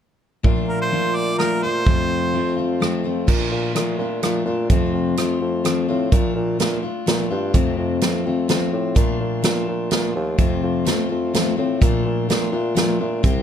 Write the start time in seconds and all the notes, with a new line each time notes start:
0.43 A#2 F3 A3 D4 F4, kick
0.68 A#4
0.81 C5
0.91 F3 A3 D4 F4
1.15 D5
1.38 F3 A3 D4 F4 A#4, cross-stick
1.63 A3 D4 F4 C5
1.87 F2 C3 F3 A3 C4 F4, kick
2.33 F3 A3 C4 F4
2.57 F3 A3 C4 F4
2.80 F3 A3 C4 F4, cross-stick
3.04 F3 A3 C4 F4
3.27 A#2 F3 A3 D4 F4, kick, crash
3.52 A#2
3.74 A#2 F3 A3 D4 F4, cross-stick, closed hi-hat
3.99 A#2 A3 D4 F4
4.22 A#2 F3 A3 D4 F4, cross-stick, closed hi-hat
4.46 A#2 A3 D4 F4
4.70 F2 C3 F3 A3 C4 F4, kick, closed hi-hat
4.94 F2
5.17 F2 F3 A3 C4 F4, cross-stick, closed hi-hat
5.41 F2
5.64 F2 F3 A3 C4 F4, cross-stick, closed hi-hat
5.88 A2 F3 A3 C4 F4
6.12 A#2 F3 A3 D4 F4, kick, closed hi-hat
6.36 A#2
6.59 A#2 F3 A3 D4 F4, snare, closed hi-hat
6.83 A3 D4 F4
7.06 A#2 F3 A3 D4 F4, snare, closed hi-hat
7.30 G2 A3 D4 F4
7.54 F2 C3 F3 A3 C4 F4, kick, closed hi-hat
7.79 F2
8.01 F2 F3 A3 C4 F4, snare, closed hi-hat
8.25 F2 F3 A3 C4 F4
8.48 F2 F3 A3 C4 F4, snare, closed hi-hat
8.73 A2
8.95 A#2 F3 A3 D4 F4, kick, closed hi-hat
9.21 A#2
9.42 A#2 F3 A3 D4 F4, snare, closed hi-hat
9.68 A#2
9.90 A#2 F3 A3 D4 F4, snare, closed hi-hat
10.16 D#2
10.38 F2 C3 F3 A3 C4 F4, kick, closed hi-hat
10.63 F2
10.85 F2 F3 A3 C4 F4, snare, closed hi-hat
11.09 F2 F3 A3 C4 F4
11.34 F2 F3 A3 C4 F4, snare, closed hi-hat
11.57 A2 F3 A3 C4 F4
11.81 A#2 F3 A3 D4 F4, kick, closed hi-hat
12.06 A#2
12.29 A#2 F3 A3 D4 F4, snare, closed hi-hat
12.52 A#2 A3 D4 F4
12.75 A#2 F3 A3 D4 F4, snare, closed hi-hat
12.99 A#2 A3 D4 F4
13.23 C2 C3 G3 C4 E4 G4, kick, closed hi-hat